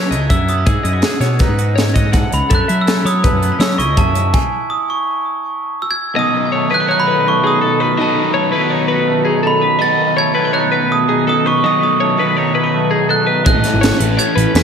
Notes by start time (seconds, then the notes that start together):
Already playing: F#2 C#3 F#3 A3 C#4 E4 C#5 G#6
0.10 C#2 E4 D#5, closed hi-hat
0.29 F#2 E4 E5 E6, kick, closed hi-hat
0.48 B3 D#6, closed hi-hat
0.58 C#4
0.66 G#2 F#4 G#4, kick, closed hi-hat
0.83 F#2 E4 D#5, closed hi-hat
0.93 F#4
1.02 F#4 G#4, snare, closed hi-hat
1.20 B2 B3 C#5, snare, closed hi-hat
1.39 D#4 B4, kick, snare, closed hi-hat
1.48 G#2
1.59 F#4, closed hi-hat
1.76 G#2 C#5, snare, closed hi-hat
1.94 G#2 F#4 D#5, kick, closed hi-hat
2.13 G#2 A2 F#5, kick, snare, closed hi-hat
2.31 C#2 G#2 B5, closed hi-hat
2.49 F#2 F#3 A3 C#4 E4 A4, kick, closed hi-hat
2.55 F#6
2.68 F#3 C#4 E5, closed hi-hat
2.81 E6
2.87 E4 A4, snare, closed hi-hat
3.04 F#3 C#5 D#6, closed hi-hat
3.23 A3 B4, kick, closed hi-hat
3.32 F#2
3.41 B3, closed hi-hat
3.52 C#4
3.59 C#3 F#3 C#5 E6, snare, closed hi-hat
3.78 C#2 E4 D#5 C#6, closed hi-hat
3.96 F#2 E5 A5, kick, closed hi-hat
4.15 G#2, closed hi-hat
4.34 G#5, kick, crash
4.70 D#6
4.90 C#6
5.82 E6
5.91 G#6
6.15 B2 D#3 F#3 B3 D#4 D#5
6.19 A4 D#6
6.34 D#3
6.52 A3 C#5
6.70 B2 D#3 F#3 B3 D#4 E4 A4 B4
6.74 F#6
6.80 F#4
6.89 D#4 C#5 F#6
7.00 B5
7.08 F#4 B4
7.27 A3 C#6
7.44 D#4 G#4 D#6
7.61 B2 A4
7.80 D#3 B4
7.97 B2 D#3 F#3 B3 D#4 A4 D#5 A5
8.15 D#3
8.33 A3 C#5
8.51 F#3 B3 D#4 E4 A4 B4
8.55 B2 D#3
8.61 F#4
8.70 D#4 C#5
8.88 F#4 B4
9.07 A3
9.25 D#4 G#4
9.43 B2 A4
9.47 B5
9.61 D#3 B4
9.79 B2 D#3 F#3 B3 D#4 A4 D#5 A6
9.98 D#3
10.17 A3 C#5 G#6
10.34 B2 D#3 F#3 B3 D#4 E4 A4 B4
10.45 F#4
10.53 D#4 C#5 F#6
10.72 F#4 B4
10.91 A3 D#6
11.09 D#4 G#4
11.27 B2 A4 D#6
11.45 D#3 B4 C#6
11.63 B2 D#3 F#3 B3 D#4 A4 D#5 D#6
11.81 D#3 D#6
12.00 A3 C#5
12.18 B2 D#3 F#3 B3 D#4 F#4 A4 B4
12.37 D#4 C#5
12.55 E4 B4
12.63 F#4
12.74 A3
12.91 D#4 G#4
13.08 B2 A4 F#6
13.26 D#3 B4
13.44 A1 A2 E3 A3 C#4 E4 D#5 F#6, kick, closed hi-hat
13.48 A4
13.54 A2
13.63 E3, snare, closed hi-hat
13.74 G#1
13.81 C#5, snare, closed hi-hat
13.98 A1 A2 E3 A3 C#4 E4 A4 B4, closed hi-hat
14.17 B3 C#5 G#6, closed hi-hat
14.27 C#4
14.36 A1 B4, closed hi-hat
14.54 E2 B6, snare, closed hi-hat